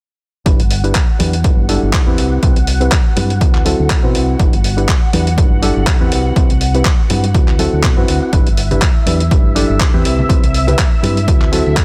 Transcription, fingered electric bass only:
0.46 G1
0.59 G1
1.20 E2
1.44 G1
1.83 G1
2.07 E2
2.18 C2
2.43 C2
2.56 C2
3.17 G2
3.41 D2
3.79 D2
4.04 B2
4.15 C2
4.40 G1
4.53 G1
5.13 E2
5.38 G1
5.76 G1
6.01 E2
6.12 C2
6.36 C2
6.50 C2
7.10 G2
7.34 D2
7.73 D2
7.97 F#2
8.08 D2
8.33 G1
8.47 G1
9.07 E2
9.31 G1
9.69 G1
9.94 E2
10.05 C2
10.30 C2
10.43 C2
11.03 G2
11.28 D2
11.66 D2

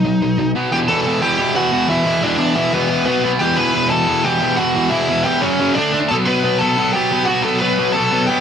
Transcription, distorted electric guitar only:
0.05 B2 F#3
0.22 B2 F#3
0.38 B2 F#3
0.55 B2 F#3 B3
0.71 E2 B2 E3
0.89 E2 B2 E3
1.06 E2 B2 E3
1.22 E2 B2 E3
1.39 E2 B2 E3
1.56 E2 B2 E3
1.72 E2 B2 E3
1.89 E2 B2 E3
2.06 E2 B2 E3
2.23 E2 B2 E3
2.39 E2 B2 E3
2.56 E2 B2 E3
2.74 E2 B2 E3
2.90 E2 B2 E3
3.07 B2 F#3 B3
3.25 B2 F#3 B3
3.41 E2 B2 E3
3.58 E2 B2 E3
3.74 E2 B2 E3
3.92 E2 B2 E3
4.08 E2 B2 E3
4.25 E2 B2 E3
4.42 E2 B2 E3
4.59 E2 B2 E3
4.76 E2 B2 E3
4.92 E2 B2 E3
5.10 E2 B2 E3
5.26 E2 B2 E3
5.42 F#2 C#3 F#3
5.59 F#2 C#3 F#3
5.77 D3 A3 D4
5.93 D3 A3 D4
6.11 B2 F#3 B3
6.27 B2 F#3 B3
6.44 B2 F#3 B3
6.61 B2 F#3 B3
6.78 B2 F#3 B3
6.95 B2 F#3 B3
7.12 B2 F#3 B3
7.28 B2 F#3 B3
7.44 B2 F#3 B3
7.62 B2 F#3 B3
7.79 B2 F#3 B3
7.96 B2 F#3 B3
8.12 B2 F#3 B3
8.29 B2 F#3 B3

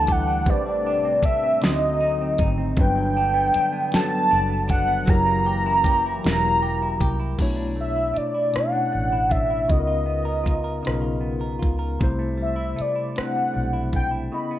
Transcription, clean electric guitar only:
Already playing: E3 A3 D4
0.09 G4
0.27 D4
0.47 A2
0.66 G3
0.87 D4
1.05 C4
1.23 D4
1.43 C4
1.61 D3
1.81 F#3
2.00 D#4
2.21 C4
2.39 D#4
2.58 C4
2.79 G2
2.96 F#3
3.17 D4
3.34 B3
3.55 D4
3.72 B3
3.91 G2
4.10 F#3
4.31 D4
4.49 B3
4.68 D4
4.88 B3
5.06 F#3
5.26 A#3
5.46 G4
5.66 E4
5.84 G4
6.06 E4
6.26 F#3
6.44 A#3
6.62 G4
6.82 E4
7.01 G4
7.20 E4
7.38 B2
7.56 D4
7.76 A3
7.96 E4
8.14 D4
8.34 E4
8.52 B2
8.72 D4
8.92 A3
9.12 E4
9.29 D4
9.50 E4
9.68 C#3
9.87 F4
10.06 B3
10.25 A#4
10.44 F4
10.64 A#4
10.83 C#3
11.02 F4
11.21 B3
11.41 A#4
11.59 F4
11.79 A#4
11.99 C3
12.19 A3
12.37 G3
12.56 E4
12.76 A3
12.95 E4
13.16 C3
13.36 A3
13.54 G3
13.73 E4
13.93 A3
14.11 E4
14.32 C#3
14.51 B3

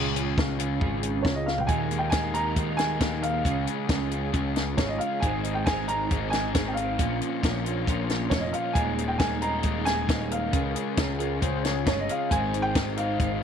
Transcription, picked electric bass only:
Already playing: C#2
0.38 C#2
0.81 G#1
1.25 C#2
1.68 D#2
2.12 D#2
2.57 D#2
3.01 D#2
3.45 C#2
3.89 C#2
4.34 C#2
4.78 G#1
5.23 G#1
5.67 G#1
6.11 G#1
6.55 G#1
6.99 A#1
7.44 A#1
7.88 A#1
8.32 F1
8.75 D#1
9.20 D#1
9.64 D#1
10.08 D#1
10.54 C#2
10.98 C#2
11.42 C#2
11.87 G1
12.31 G#1
12.76 G#1
13.19 G#1

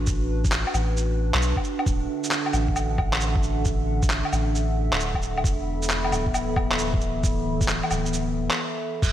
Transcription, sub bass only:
Already playing: A1
0.74 A1
1.34 B1
1.87 D1
2.53 A1
4.33 A1
4.92 D1
5.44 E1
6.12 D1
7.91 D1
9.03 F#1

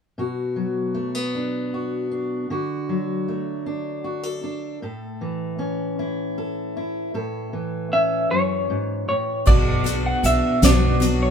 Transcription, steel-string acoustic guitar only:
0.18 B2 F#4
0.56 F#3
0.94 A3
1.15 B3
1.35 D4
1.74 F#4
2.11 D4
2.50 D3 F#4
2.89 F#3
3.28 A3
3.66 D4
4.04 F#4
4.23 A4
4.44 D4
4.82 A2 A4
5.21 E3
5.59 C#4
5.99 E4
6.38 A4
6.77 E4
7.14 A2 A4
7.53 E3
7.93 C#4
8.31 F#2
8.70 G#2
9.09 A2
9.47 B2
9.85 B3
10.25 D4
10.63 B3
11.00 F#3

